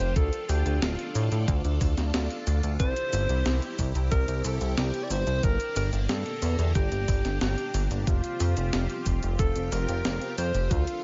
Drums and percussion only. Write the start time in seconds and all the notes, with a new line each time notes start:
0.00 closed hi-hat, shaker
0.16 kick, closed hi-hat, shaker
0.33 closed hi-hat, shaker
0.49 open hi-hat, shaker
0.66 closed hi-hat, shaker
0.82 snare, closed hi-hat, shaker
0.99 closed hi-hat
1.15 open hi-hat, shaker
1.32 closed hi-hat, shaker
1.48 kick, closed hi-hat, shaker
1.65 closed hi-hat, shaker
1.81 kick, open hi-hat, shaker
1.98 snare, closed hi-hat, shaker
2.14 snare, closed hi-hat, shaker
2.30 closed hi-hat
2.47 open hi-hat, shaker
2.63 closed hi-hat, shaker
2.80 kick, closed hi-hat, shaker
2.96 closed hi-hat, shaker
3.13 open hi-hat, shaker
3.29 closed hi-hat, shaker
3.46 snare, closed hi-hat, shaker
3.62 closed hi-hat
3.79 kick, open hi-hat, shaker
3.95 closed hi-hat, shaker
4.12 kick, closed hi-hat, shaker
4.28 closed hi-hat, shaker
4.44 open hi-hat, shaker
4.61 closed hi-hat, shaker
4.77 snare, closed hi-hat, shaker
4.94 closed hi-hat
5.11 open hi-hat, shaker
5.27 closed hi-hat, shaker
5.43 kick, closed hi-hat, shaker
5.60 closed hi-hat, shaker
5.76 open hi-hat, shaker
5.93 closed hi-hat, shaker
6.09 snare, closed hi-hat, shaker
6.26 closed hi-hat
6.42 open hi-hat, shaker
6.59 closed hi-hat, shaker
6.75 kick, closed hi-hat, shaker
6.92 closed hi-hat, shaker
7.08 kick, open hi-hat, shaker
7.25 snare, closed hi-hat, shaker
7.41 snare, closed hi-hat, shaker
7.58 closed hi-hat
7.74 open hi-hat, shaker
7.91 closed hi-hat, shaker
8.07 kick, closed hi-hat, shaker
8.24 closed hi-hat, shaker
8.40 open hi-hat, shaker
8.57 closed hi-hat, shaker
8.73 snare, closed hi-hat, shaker
8.90 closed hi-hat
9.06 kick, open hi-hat, shaker
9.23 closed hi-hat, shaker
9.39 kick, closed hi-hat, shaker
9.56 closed hi-hat, shaker
9.72 open hi-hat, shaker
9.89 closed hi-hat, shaker
10.05 snare, closed hi-hat, shaker
10.21 closed hi-hat
10.38 open hi-hat, shaker
10.54 closed hi-hat, shaker
10.71 kick, closed hi-hat, shaker
10.87 closed hi-hat, shaker